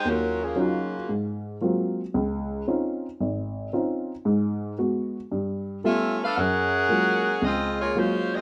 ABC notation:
X:1
M:4/4
L:1/8
Q:"Swing" 1/4=114
K:Dblyd
V:1 name="Saxophone section"
[_G,DFB] [F,B,DA] [D,B,F_G]2 z4 | z8 | z6 [DF=A=e] [=DA=Bf] | [DAB_g]4 [CFAe] [B,FAd] [A,DFc] [CFAe] |]
V:2 name="Upright piano"
E,,2 [_G,DEF] z A,,2 [G,A,B,CF] z | D,,2 [CDEF] z A,,,2 [CDEF] z | [A,,A,]2 [A,_C_G] z =G,,2 [G,=A,=B,F] z | _G,,2 [_G,A,B,F] z D,,2 [G,A,B,F] z |]